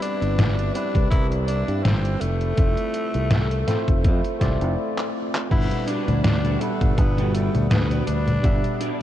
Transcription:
Already playing: tine electric piano G3 B3 C4 E4 B4, ambient pad B4 E5
0.02 tenor saxophone D4, closed hi-hat
0.22 fingered electric bass G1, closed hi-hat
0.39 snare, closed hi-hat
0.59 closed hi-hat
0.74 tine electric piano G3 C4 E4 B4, tenor saxophone D4, closed hi-hat
0.95 fingered electric bass C2, kick, closed hi-hat
1.11 fingered electric bass C2, tenor saxophone E4, kick, closed hi-hat
1.32 closed hi-hat
1.48 tenor saxophone D4, closed hi-hat
1.68 fingered electric bass G2, closed hi-hat
1.84 fingered electric bass G1, tenor saxophone C4, snare, closed hi-hat
2.05 closed hi-hat
2.21 fingered electric bass F1, tenor saxophone A3, ambient pad A4 E6, closed hi-hat
2.41 closed hi-hat
2.57 fingered electric bass F1, tine electric piano A3 C4 E4 F4 E5, kick, closed hi-hat
2.78 closed hi-hat
2.94 closed hi-hat
3.14 fingered electric bass C2, closed hi-hat
3.31 snare, closed hi-hat
3.51 closed hi-hat
3.67 tine electric piano A3 C4 E4 F4 C5, snare, closed hi-hat
3.88 fingered electric bass F1, kick, closed hi-hat
4.05 fingered electric bass F2, kick, closed hi-hat
4.25 closed hi-hat
4.39 fingered electric bass C2, tine electric piano A3 C4 E4 F4 D5, kick, snare, closed hi-hat
4.61 fingered electric bass F1, closed hi-hat
4.98 clap
5.35 clap
5.49 fingered electric bass G1, tine electric piano G3 B3 D4 B4 F#5, ambient pad G3 F#5 B5, tenor saxophone E4, kick, closed hi-hat, crash, high conga
5.71 closed hi-hat, high conga
5.87 clean electric guitar D4 F#4 G4 B4, tenor saxophone D4, closed hi-hat
6.08 fingered electric bass D2, closed hi-hat, high conga
6.23 tenor saxophone D4, muted clean electric guitar stroke, snare, closed hi-hat, high conga
6.43 clean electric guitar D4 F#4 G4 A4, closed hi-hat, high conga
6.60 tine electric piano G3 B3 D4 B4 F#5, tenor saxophone A3, closed hi-hat
6.81 fingered electric bass G1, kick, closed hi-hat, high conga
6.97 fingered electric bass G1, tenor saxophone B3, muted clean electric guitar stroke, kick, closed hi-hat, high conga
7.16 clean electric guitar D4 F#4 G4 A4, closed hi-hat, high conga
7.33 tenor saxophone A3, closed hi-hat
7.54 fingered electric bass D2, closed hi-hat, high conga
7.69 fingered electric bass D2, tenor saxophone B3, snare, closed hi-hat, high conga
7.90 clean electric guitar D4 F#4 G4 D5, closed hi-hat, high conga
8.07 fingered electric bass D2, tenor saxophone D4, closed hi-hat
8.27 muted clean electric guitar stroke, closed hi-hat, high conga
8.42 fingered electric bass G1, tine electric piano G3 B3 D4 E5 F#5, kick, closed hi-hat, high conga
8.64 closed hi-hat, high conga
8.79 clean electric guitar D4 F#4 G4 D5, closed hi-hat

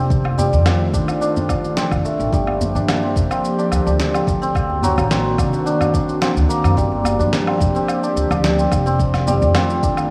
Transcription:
Already playing: upright bass F1, santur G3 A#3 C4 D4
0.10 analog synth pad D#3 A3 F4, kick, shaker
0.24 djembe tone, low woodblock
0.38 santur G3, djembe bass, shaker
0.53 upright bass F2, djembe tone, shaker
0.66 santur C4, snare, djembe slap, low woodblock, shaker
0.93 upright bass D#2, santur D4, kick, shaker
1.08 djembe slap, low woodblock, shaker
1.21 santur D4, shaker
1.37 djembe bass, shaker
1.49 santur D4, kick, djembe slap, low woodblock, shaker
1.64 shaker
1.77 santur C4, snare, shaker
1.91 upright bass F1, kick, djembe slap, low woodblock, shaker
2.05 santur A3, shaker
2.20 upright bass A1, shaker
2.33 upright bass G1, analog synth pad F3 A#3 G4, santur G3, kick, shaker
2.47 djembe tone, low woodblock
2.61 djembe bass, shaker
2.75 upright bass G2, santur D4, djembe tone, shaker
2.88 snare, low woodblock, shaker
3.03 santur C4
3.16 upright bass F1, kick, shaker
3.31 santur C4, djembe slap, low woodblock, shaker
3.45 shaker
3.58 santur D4, shaker
3.72 upright bass D2, low woodblock, shaker
3.86 upright bass D2, santur D4, shaker
4.00 snare, shaker
4.14 santur C4, low woodblock, shaker
4.27 upright bass D2, kick, shaker
4.42 santur C4, shaker
4.55 analog synth pad D#3 A#3 C4 F#4, kick, low woodblock, shaker
4.70 djembe tone
4.82 santur F#3, djembe bass, shaker
4.97 upright bass A1, djembe tone, low woodblock, shaker
5.10 santur C4, snare, shaker
5.38 upright bass C2, santur D4, kick, low woodblock, shaker
5.53 djembe slap, shaker
5.66 santur D4, shaker
5.81 djembe bass, low woodblock, shaker
5.94 santur D4, kick, djembe slap, shaker
6.09 shaker
6.21 santur C4, snare, low woodblock, shaker
6.37 upright bass D2, shaker
6.49 santur A#3, shaker
6.64 upright bass F#2, low woodblock, shaker
6.77 upright bass G1, analog synth pad F3 G4, santur G3, kick, shaker
6.92 djembe tone
7.04 djembe bass, low woodblock, shaker
7.19 upright bass G2, santur D4, djembe tone, shaker
7.33 snare, shaker
7.47 santur C4, low woodblock
7.61 upright bass F1, kick, shaker
7.75 santur C4, djembe slap, shaker
7.88 low woodblock, shaker
8.03 santur D4, shaker
8.16 upright bass D2, shaker
8.31 upright bass D2, santur D4, low woodblock, shaker
8.44 snare, shaker
8.59 santur C4, shaker
8.72 upright bass F1, kick, low woodblock, shaker
8.86 santur C4, shaker
8.99 analog synth pad D#3 A3 F4, kick, shaker
9.14 snare, djembe tone, low woodblock, shaker
9.27 santur G3, djembe bass, shaker
9.41 upright bass F2, djembe tone, shaker
9.55 santur C4, snare, low woodblock, shaker
9.70 shaker
9.83 upright bass D#2, santur D4, kick, shaker
9.97 djembe slap, low woodblock, shaker

